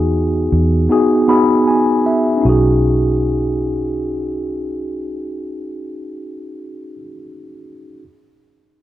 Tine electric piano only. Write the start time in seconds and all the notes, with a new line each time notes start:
Already playing: B3 D#4 F#4 G#4
0.89 B3 D#4 F#4 G#4
1.28 B3 D#4 F#4 G#4 B5
1.67 G#5
2.06 E5
2.38 C#4
2.42 D#4
2.46 F#4 G#4